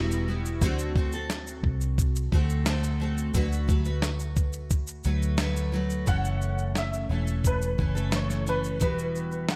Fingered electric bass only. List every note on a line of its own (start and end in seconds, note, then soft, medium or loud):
0.00 0.61 E1 medium
0.61 1.60 D2 loud
1.63 2.28 C2 loud
2.32 3.30 D2 loud
3.34 5.01 D2 loud
5.05 6.04 D2 medium
6.07 7.06 F#1 medium
7.10 7.74 E1 medium
7.78 8.81 F#1 medium
8.81 9.56 E1 loud